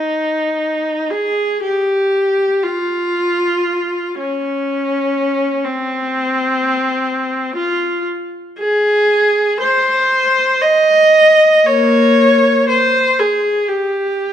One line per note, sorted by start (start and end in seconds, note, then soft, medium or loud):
0.00 1.10 D#4 medium
1.10 1.63 G#4 medium
1.64 2.63 G4 medium
2.64 4.19 F4 medium
4.19 5.63 C#4 medium
5.64 7.55 C4 medium
7.56 8.05 F4 medium
8.59 9.56 G#4 medium
9.60 10.61 C5 medium
10.61 11.66 D#5 medium
11.66 12.65 A#3 medium
11.66 12.69 C#5 medium
12.69 13.17 C5 medium
13.19 13.68 G#4 medium
13.67 14.33 G4 medium